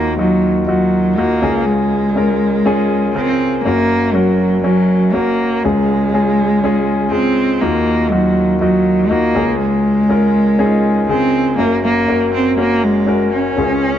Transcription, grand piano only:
Already playing: D#2 D#3 D#4 F4 F#4 C#5
0.18 D#4 F4 F#4
0.67 D#4 F4 F#4
1.17 D#4 F4 F#4
1.42 C#2 C#3 C#4 F4 G#4
2.16 C#4 F4 A#4
2.66 C#4 F4 G#4
3.15 C#3 F4 A#4
3.65 F#1 F#2 C#4 F#4 A#4
4.14 C#4 F#4 A#4
4.64 C#4 F#4 A#4
5.14 C#4 F#4 A#4
5.65 C#2 C#3 C#4 F4 G#4
6.14 C#4 F4 G#4
6.64 C#4 F4 G#4
7.12 G#3 F4 G#4
7.61 D#2 D#3 D#4 F4 F#4
8.11 D#4 F4 F#4
8.61 D#4 F4 F#4
9.10 D#4 F4 F#4
9.35 C#2 C#3 C#4 F4 G#4
10.09 C#4 F4 A#4
10.59 C#4 D#4 G#4
10.66 F4
11.09 C#3 F4 G#4
11.59 F#1 F#2 C#4 F#4 A#4
12.08 C#4 F#4 A#4
12.58 C#4 F#4 A#4
13.07 C#4 F#4 A#4
13.57 C#2 C#3 C#4 F4 G#4

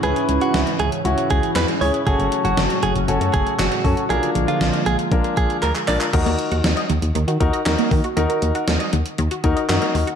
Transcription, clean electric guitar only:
0.04 G#4
0.42 F#4
0.80 G#4
1.31 G#4
1.56 B4
1.81 C#5
2.07 G#4
2.45 F#4
2.83 G#4
3.34 G#4
3.59 F#4
4.10 G#4
4.48 F4
4.86 G#4
5.37 G#4
5.62 A#4
5.88 D5

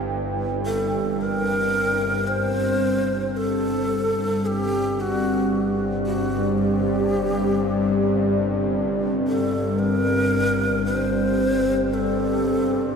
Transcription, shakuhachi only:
0.65 A4
1.21 A#4
2.27 C5
3.37 A4
4.46 G4
5.00 F#4
6.06 F#4
6.58 G4
9.28 A4
9.79 A#4
10.86 C5
11.93 A4

